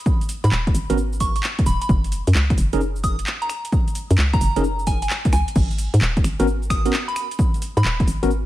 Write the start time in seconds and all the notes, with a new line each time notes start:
0.06 kick, cabasa
0.21 closed hi-hat, cabasa
0.29 open hi-hat, cabasa
0.44 G#2 B5, closed hi-hat, cabasa
0.52 D#1 B5, clap, cabasa
0.67 kick, closed hi-hat
0.74 G#1, open hi-hat, cabasa
0.90 G#1 B3 C#4 F#4 A#4, closed hi-hat, cabasa
0.98 cabasa
1.13 cabasa
1.20 C#6, kick, open hi-hat, cabasa
1.36 C#6, closed hi-hat, cabasa
1.43 clap, cabasa
1.59 kick, closed hi-hat
1.66 D#1 B5, open hi-hat, cabasa
1.81 B5, closed hi-hat, cabasa
1.89 F#1, kick, cabasa
2.04 closed hi-hat, cabasa
2.12 open hi-hat, cabasa
2.27 F#2, closed hi-hat, cabasa
2.35 C#2, clap, cabasa
2.50 finger snap, kick, closed hi-hat
2.58 F#1, open hi-hat, cabasa
2.73 F#1 C#4 D#4 G#4 A#4, closed hi-hat, cabasa
2.81 cabasa
2.96 cabasa
3.04 D#6, kick, open hi-hat, cabasa
3.19 closed hi-hat, cabasa
3.27 clap, cabasa
3.42 A#5, closed hi-hat
3.49 finger snap, open hi-hat, cabasa
3.65 closed hi-hat, cabasa
3.72 kick, cabasa
3.88 closed hi-hat, cabasa
3.95 open hi-hat, cabasa
4.11 F#2, closed hi-hat, cabasa
4.18 C#2, clap, cabasa
4.33 A#5, finger snap, kick, closed hi-hat, cabasa
4.41 F#1, open hi-hat, cabasa
4.56 F#1 C#4 D#4 G#4 A#4, closed hi-hat, cabasa
4.64 cabasa
4.79 cabasa
4.87 G#5, kick, open hi-hat, cabasa
5.02 G#5, closed hi-hat, cabasa
5.10 clap, cabasa
5.25 kick, closed hi-hat, cabasa
5.33 C#2 G#5, finger snap, open hi-hat, cabasa
5.48 closed hi-hat, cabasa
5.56 G#1, kick, crash, cabasa
5.71 closed hi-hat, cabasa
5.78 open hi-hat, cabasa
5.94 G#2, closed hi-hat, cabasa
6.01 D#1, clap, cabasa
6.17 kick, closed hi-hat
6.24 G#1, finger snap, open hi-hat, cabasa
6.40 G#1 B3 C#4 F#4 A#4, closed hi-hat, cabasa
6.47 cabasa
6.63 cabasa
6.70 D#6, finger snap, kick, open hi-hat, cabasa
6.85 B3 C#4 F#4 A#4, closed hi-hat, cabasa
6.93 clap, cabasa
7.08 B5, closed hi-hat
7.16 finger snap, open hi-hat, cabasa
7.31 closed hi-hat, cabasa
7.39 kick, cabasa
7.54 closed hi-hat, cabasa
7.62 open hi-hat, cabasa
7.77 G#2 B5, closed hi-hat, cabasa
7.85 D#1, clap, cabasa
8.00 kick, closed hi-hat
8.08 G#1, open hi-hat, cabasa
8.23 G#1 B3 C#4 F#4 A#4, closed hi-hat, cabasa
8.31 cabasa